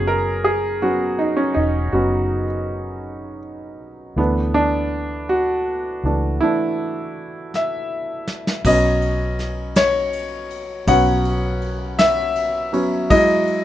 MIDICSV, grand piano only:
0, 0, Header, 1, 2, 480
1, 0, Start_track
1, 0, Tempo, 744417
1, 1258, Time_signature, 6, 3, 24, 8
1, 8798, End_track
2, 0, Start_track
2, 0, Title_t, "Grand piano"
2, 0, Program_c, 0, 0
2, 0, Control_c, 0, 64, 127
2, 0, Note_on_c, 0, 54, 39
2, 0, Note_on_c, 0, 59, 35
2, 0, Note_on_c, 0, 61, 45
2, 0, Note_on_c, 0, 68, 74
2, 48, Note_on_c, 0, 70, 70
2, 287, Note_off_c, 0, 68, 0
2, 287, Note_on_c, 0, 68, 71
2, 300, Note_off_c, 0, 70, 0
2, 519, Note_off_c, 0, 54, 0
2, 524, Note_off_c, 0, 59, 0
2, 525, Note_off_c, 0, 61, 0
2, 528, Note_on_c, 0, 54, 37
2, 530, Note_on_c, 0, 66, 73
2, 533, Note_on_c, 0, 59, 34
2, 535, Note_on_c, 0, 61, 38
2, 539, Note_off_c, 0, 68, 0
2, 748, Note_off_c, 0, 54, 0
2, 751, Note_off_c, 0, 59, 0
2, 752, Note_off_c, 0, 61, 0
2, 765, Note_on_c, 0, 63, 63
2, 781, Note_off_c, 0, 66, 0
2, 881, Note_on_c, 0, 61, 63
2, 895, Note_off_c, 0, 63, 0
2, 995, Note_on_c, 0, 63, 68
2, 1013, Note_off_c, 0, 61, 0
2, 1052, Note_off_c, 0, 63, 0
2, 1241, Note_on_c, 0, 66, 64
2, 1248, Note_on_c, 0, 54, 40
2, 1252, Note_on_c, 0, 59, 38
2, 1253, Note_on_c, 0, 61, 45
2, 1572, Note_off_c, 0, 54, 0
2, 1574, Note_off_c, 0, 59, 0
2, 1575, Note_off_c, 0, 61, 0
2, 2184, Note_off_c, 0, 66, 0
2, 2685, Note_on_c, 0, 52, 43
2, 2691, Note_on_c, 0, 57, 38
2, 2694, Note_on_c, 0, 59, 59
2, 2698, Note_on_c, 0, 62, 44
2, 2708, Control_c, 0, 64, 0
2, 2805, Control_c, 0, 64, 127
2, 2920, Note_off_c, 0, 62, 0
2, 2930, Note_on_c, 0, 62, 80
2, 2944, Note_off_c, 0, 59, 0
2, 3413, Note_on_c, 0, 66, 72
2, 3429, Note_off_c, 0, 62, 0
2, 3870, Note_off_c, 0, 66, 0
2, 3890, Note_off_c, 0, 52, 0
2, 3895, Note_off_c, 0, 57, 0
2, 3900, Note_on_c, 0, 52, 38
2, 3904, Note_on_c, 0, 62, 42
2, 3905, Note_on_c, 0, 57, 33
2, 4115, Note_off_c, 0, 52, 0
2, 4118, Note_off_c, 0, 57, 0
2, 4118, Note_off_c, 0, 62, 0
2, 4130, Note_on_c, 0, 64, 77
2, 4138, Note_on_c, 0, 52, 40
2, 4143, Note_on_c, 0, 57, 37
2, 4148, Note_on_c, 0, 62, 46
2, 4832, Note_off_c, 0, 52, 0
2, 4835, Note_off_c, 0, 57, 0
2, 4837, Note_off_c, 0, 62, 0
2, 4871, Note_on_c, 0, 76, 74
2, 5308, Note_off_c, 0, 64, 0
2, 5558, Note_off_c, 0, 76, 0
2, 5581, Note_on_c, 0, 54, 49
2, 5584, Note_on_c, 0, 59, 43
2, 5587, Control_c, 0, 64, 0
2, 5587, Note_on_c, 0, 75, 83
2, 5590, Note_on_c, 0, 61, 53
2, 5684, Control_c, 0, 64, 127
2, 6299, Note_on_c, 0, 73, 87
2, 6323, Note_off_c, 0, 75, 0
2, 6991, Note_off_c, 0, 73, 0
2, 6992, Note_off_c, 0, 54, 0
2, 6993, Note_off_c, 0, 59, 0
2, 6996, Note_off_c, 0, 61, 0
2, 7010, Note_on_c, 0, 54, 51
2, 7015, Note_on_c, 0, 59, 50
2, 7017, Note_on_c, 0, 78, 98
2, 7020, Note_on_c, 0, 61, 59
2, 7332, Note_off_c, 0, 54, 0
2, 7334, Note_off_c, 0, 59, 0
2, 7337, Note_off_c, 0, 61, 0
2, 7530, Note_off_c, 0, 78, 0
2, 7729, Note_on_c, 0, 76, 99
2, 8206, Note_on_c, 0, 54, 49
2, 8209, Note_on_c, 0, 59, 44
2, 8213, Note_on_c, 0, 61, 53
2, 8425, Note_off_c, 0, 54, 0
2, 8427, Note_off_c, 0, 59, 0
2, 8429, Note_off_c, 0, 61, 0
2, 8449, Note_on_c, 0, 75, 92
2, 8450, Note_on_c, 0, 54, 55
2, 8452, Note_on_c, 0, 56, 50
2, 8459, Note_on_c, 0, 64, 60
2, 8463, Control_c, 0, 64, 0
2, 8472, Note_off_c, 0, 76, 0
2, 8575, Control_c, 0, 64, 127
2, 8798, Note_off_c, 0, 54, 0
2, 8798, Note_off_c, 0, 56, 0
2, 8798, Note_off_c, 0, 64, 0
2, 8798, Note_off_c, 0, 75, 0
2, 8798, End_track
0, 0, End_of_file